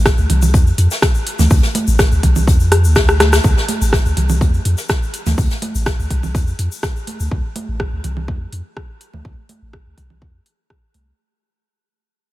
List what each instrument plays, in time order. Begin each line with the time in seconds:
Already playing: sub bass A1
0.05 kick, cross-stick, snare, closed hi-hat, shaker
0.17 sub bass D2, shaker
0.29 sub bass C2, closed hi-hat, open hi-hat, low conga
0.42 low conga, shaker
0.53 sub bass F2, kick, closed hi-hat, shaker
0.67 shaker
0.78 sub bass F2, closed hi-hat, open hi-hat
0.91 snare, shaker
1.02 kick, cross-stick, snare, closed hi-hat, shaker
1.15 shaker
1.26 closed hi-hat, open hi-hat
1.39 sub bass D2, snare, high conga, low conga, shaker
1.50 sub bass D2, kick, open hi-hat, shaker
1.63 snare, shaker
1.75 closed hi-hat, open hi-hat, high conga
1.87 sub bass A1, shaker
1.99 kick, cross-stick, snare, closed hi-hat, shaker
2.12 sub bass D2, shaker
2.23 sub bass C2, kick, closed hi-hat, open hi-hat, low conga
2.36 low conga, shaker
2.47 sub bass F2, kick, closed hi-hat, shaker
2.60 shaker
2.72 cross-stick, closed hi-hat, open hi-hat
2.84 sub bass D2, shaker
2.95 kick, cross-stick, snare, closed hi-hat, shaker
3.08 cross-stick, shaker
3.20 cross-stick, snare, closed hi-hat, open hi-hat, high conga
3.33 cross-stick, snare, closed hi-hat, shaker
3.44 sub bass D2, kick, closed hi-hat, shaker
3.57 snare, shaker
3.69 closed hi-hat, open hi-hat, high conga
3.81 sub bass A1, shaker
3.93 kick, cross-stick, snare, closed hi-hat, shaker
4.05 sub bass D2, shaker
4.17 sub bass C2, closed hi-hat, open hi-hat, low conga
4.29 low conga, shaker
4.41 sub bass F2, kick, closed hi-hat, high conga, shaker
4.54 shaker
4.65 sub bass F2, closed hi-hat, open hi-hat
4.78 snare, shaker
4.89 kick, cross-stick, snare, closed hi-hat, shaker
5.03 shaker
5.13 closed hi-hat, open hi-hat
5.26 sub bass D2, snare, high conga, low conga, shaker
5.38 sub bass D2, kick, open hi-hat, shaker
5.51 snare, shaker
5.62 closed hi-hat, open hi-hat, high conga
5.75 sub bass A1, shaker
5.86 kick, cross-stick, snare, closed hi-hat, shaker
5.99 sub bass D2, shaker
6.10 sub bass C2, kick, closed hi-hat, open hi-hat
6.23 low conga, shaker
6.35 sub bass F2, kick, closed hi-hat, shaker
6.47 shaker
6.59 sub bass F2, closed hi-hat, open hi-hat
6.72 shaker
6.83 kick, cross-stick, snare, closed hi-hat, shaker
6.96 shaker
7.07 closed hi-hat, open hi-hat, high conga
7.20 sub bass D2, shaker
7.31 sub bass D2, kick
7.56 open hi-hat, high conga
7.68 sub bass A1
7.80 kick, cross-stick
7.93 sub bass D2
8.04 sub bass C2, open hi-hat, low conga
8.17 low conga
8.28 sub bass F2, kick, high conga
8.52 sub bass F2, open hi-hat
8.77 kick, cross-stick
9.01 open hi-hat
9.14 sub bass D2, high conga, low conga
9.25 sub bass D2, kick
9.49 open hi-hat, high conga
9.62 sub bass A1
9.73 kick, cross-stick
9.86 sub bass D2
9.98 sub bass C2, kick, open hi-hat
10.10 low conga
10.22 sub bass F2, kick
10.46 open hi-hat
10.70 kick, cross-stick
10.94 sub bass C2, open hi-hat, high conga